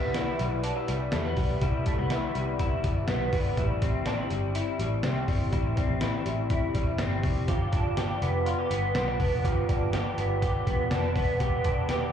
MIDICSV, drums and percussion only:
0, 0, Header, 1, 2, 480
1, 0, Start_track
1, 0, Key_signature, 0, "major"
1, 0, Tempo, 489396
1, 1582, Time_signature, 4, 2, 24, 8
1, 11888, End_track
2, 0, Start_track
2, 0, Title_t, "Drums"
2, 141, Note_on_c, 9, 42, 69
2, 142, Note_on_c, 9, 38, 93
2, 239, Note_off_c, 9, 42, 0
2, 240, Note_off_c, 9, 38, 0
2, 386, Note_on_c, 9, 42, 57
2, 484, Note_off_c, 9, 42, 0
2, 623, Note_on_c, 9, 42, 69
2, 721, Note_off_c, 9, 42, 0
2, 866, Note_on_c, 9, 42, 65
2, 964, Note_off_c, 9, 42, 0
2, 1097, Note_on_c, 9, 38, 105
2, 1104, Note_on_c, 9, 42, 73
2, 1195, Note_off_c, 9, 38, 0
2, 1202, Note_off_c, 9, 42, 0
2, 1341, Note_on_c, 9, 46, 63
2, 1343, Note_on_c, 9, 36, 72
2, 1439, Note_off_c, 9, 46, 0
2, 1441, Note_off_c, 9, 36, 0
2, 1584, Note_on_c, 9, 42, 80
2, 1586, Note_on_c, 9, 36, 96
2, 1682, Note_off_c, 9, 42, 0
2, 1684, Note_off_c, 9, 36, 0
2, 1823, Note_on_c, 9, 42, 77
2, 1828, Note_on_c, 9, 36, 73
2, 1921, Note_off_c, 9, 42, 0
2, 1926, Note_off_c, 9, 36, 0
2, 2061, Note_on_c, 9, 38, 94
2, 2061, Note_on_c, 9, 42, 72
2, 2159, Note_off_c, 9, 38, 0
2, 2159, Note_off_c, 9, 42, 0
2, 2307, Note_on_c, 9, 42, 53
2, 2405, Note_off_c, 9, 42, 0
2, 2545, Note_on_c, 9, 36, 84
2, 2545, Note_on_c, 9, 42, 71
2, 2643, Note_off_c, 9, 36, 0
2, 2643, Note_off_c, 9, 42, 0
2, 2785, Note_on_c, 9, 42, 65
2, 2787, Note_on_c, 9, 36, 86
2, 2883, Note_off_c, 9, 42, 0
2, 2885, Note_off_c, 9, 36, 0
2, 3018, Note_on_c, 9, 38, 100
2, 3024, Note_on_c, 9, 42, 69
2, 3116, Note_off_c, 9, 38, 0
2, 3122, Note_off_c, 9, 42, 0
2, 3263, Note_on_c, 9, 46, 65
2, 3264, Note_on_c, 9, 36, 84
2, 3361, Note_off_c, 9, 46, 0
2, 3362, Note_off_c, 9, 36, 0
2, 3505, Note_on_c, 9, 42, 81
2, 3506, Note_on_c, 9, 36, 92
2, 3603, Note_off_c, 9, 42, 0
2, 3604, Note_off_c, 9, 36, 0
2, 3745, Note_on_c, 9, 42, 71
2, 3747, Note_on_c, 9, 36, 80
2, 3843, Note_off_c, 9, 42, 0
2, 3845, Note_off_c, 9, 36, 0
2, 3979, Note_on_c, 9, 38, 97
2, 3979, Note_on_c, 9, 42, 66
2, 4077, Note_off_c, 9, 38, 0
2, 4077, Note_off_c, 9, 42, 0
2, 4222, Note_on_c, 9, 42, 58
2, 4320, Note_off_c, 9, 42, 0
2, 4462, Note_on_c, 9, 42, 72
2, 4561, Note_off_c, 9, 42, 0
2, 4703, Note_on_c, 9, 42, 72
2, 4801, Note_off_c, 9, 42, 0
2, 4935, Note_on_c, 9, 38, 99
2, 4942, Note_on_c, 9, 42, 75
2, 5033, Note_off_c, 9, 38, 0
2, 5040, Note_off_c, 9, 42, 0
2, 5180, Note_on_c, 9, 36, 75
2, 5180, Note_on_c, 9, 46, 60
2, 5278, Note_off_c, 9, 36, 0
2, 5278, Note_off_c, 9, 46, 0
2, 5420, Note_on_c, 9, 36, 99
2, 5420, Note_on_c, 9, 42, 85
2, 5518, Note_off_c, 9, 36, 0
2, 5518, Note_off_c, 9, 42, 0
2, 5660, Note_on_c, 9, 42, 70
2, 5662, Note_on_c, 9, 36, 79
2, 5758, Note_off_c, 9, 42, 0
2, 5760, Note_off_c, 9, 36, 0
2, 5894, Note_on_c, 9, 38, 104
2, 5894, Note_on_c, 9, 42, 77
2, 5992, Note_off_c, 9, 38, 0
2, 5992, Note_off_c, 9, 42, 0
2, 6139, Note_on_c, 9, 42, 61
2, 6237, Note_off_c, 9, 42, 0
2, 6375, Note_on_c, 9, 42, 69
2, 6376, Note_on_c, 9, 36, 79
2, 6473, Note_off_c, 9, 42, 0
2, 6474, Note_off_c, 9, 36, 0
2, 6617, Note_on_c, 9, 42, 66
2, 6618, Note_on_c, 9, 36, 81
2, 6715, Note_off_c, 9, 42, 0
2, 6716, Note_off_c, 9, 36, 0
2, 6851, Note_on_c, 9, 38, 102
2, 6857, Note_on_c, 9, 42, 72
2, 6949, Note_off_c, 9, 38, 0
2, 6955, Note_off_c, 9, 42, 0
2, 7095, Note_on_c, 9, 46, 66
2, 7096, Note_on_c, 9, 36, 80
2, 7193, Note_off_c, 9, 46, 0
2, 7194, Note_off_c, 9, 36, 0
2, 7337, Note_on_c, 9, 42, 78
2, 7339, Note_on_c, 9, 36, 100
2, 7436, Note_off_c, 9, 42, 0
2, 7437, Note_off_c, 9, 36, 0
2, 7578, Note_on_c, 9, 42, 70
2, 7581, Note_on_c, 9, 36, 76
2, 7676, Note_off_c, 9, 42, 0
2, 7679, Note_off_c, 9, 36, 0
2, 7818, Note_on_c, 9, 38, 93
2, 7818, Note_on_c, 9, 42, 71
2, 7916, Note_off_c, 9, 42, 0
2, 7917, Note_off_c, 9, 38, 0
2, 8063, Note_on_c, 9, 42, 58
2, 8161, Note_off_c, 9, 42, 0
2, 8301, Note_on_c, 9, 42, 66
2, 8399, Note_off_c, 9, 42, 0
2, 8542, Note_on_c, 9, 42, 69
2, 8640, Note_off_c, 9, 42, 0
2, 8777, Note_on_c, 9, 38, 99
2, 8784, Note_on_c, 9, 42, 71
2, 8875, Note_off_c, 9, 38, 0
2, 8882, Note_off_c, 9, 42, 0
2, 9022, Note_on_c, 9, 36, 80
2, 9024, Note_on_c, 9, 46, 62
2, 9120, Note_off_c, 9, 36, 0
2, 9122, Note_off_c, 9, 46, 0
2, 9264, Note_on_c, 9, 36, 97
2, 9267, Note_on_c, 9, 42, 80
2, 9362, Note_off_c, 9, 36, 0
2, 9365, Note_off_c, 9, 42, 0
2, 9505, Note_on_c, 9, 42, 74
2, 9506, Note_on_c, 9, 36, 79
2, 9604, Note_off_c, 9, 36, 0
2, 9604, Note_off_c, 9, 42, 0
2, 9741, Note_on_c, 9, 38, 96
2, 9741, Note_on_c, 9, 42, 74
2, 9839, Note_off_c, 9, 38, 0
2, 9839, Note_off_c, 9, 42, 0
2, 9985, Note_on_c, 9, 42, 58
2, 10083, Note_off_c, 9, 42, 0
2, 10223, Note_on_c, 9, 36, 83
2, 10225, Note_on_c, 9, 42, 69
2, 10321, Note_off_c, 9, 36, 0
2, 10323, Note_off_c, 9, 42, 0
2, 10464, Note_on_c, 9, 36, 83
2, 10467, Note_on_c, 9, 42, 68
2, 10563, Note_off_c, 9, 36, 0
2, 10565, Note_off_c, 9, 42, 0
2, 10700, Note_on_c, 9, 38, 103
2, 10707, Note_on_c, 9, 42, 77
2, 10798, Note_off_c, 9, 38, 0
2, 10805, Note_off_c, 9, 42, 0
2, 10942, Note_on_c, 9, 36, 80
2, 10942, Note_on_c, 9, 46, 62
2, 11040, Note_off_c, 9, 36, 0
2, 11040, Note_off_c, 9, 46, 0
2, 11183, Note_on_c, 9, 42, 82
2, 11184, Note_on_c, 9, 36, 96
2, 11281, Note_off_c, 9, 42, 0
2, 11282, Note_off_c, 9, 36, 0
2, 11421, Note_on_c, 9, 42, 74
2, 11425, Note_on_c, 9, 36, 81
2, 11519, Note_off_c, 9, 42, 0
2, 11524, Note_off_c, 9, 36, 0
2, 11660, Note_on_c, 9, 38, 93
2, 11660, Note_on_c, 9, 42, 73
2, 11758, Note_off_c, 9, 42, 0
2, 11759, Note_off_c, 9, 38, 0
2, 11888, End_track
0, 0, End_of_file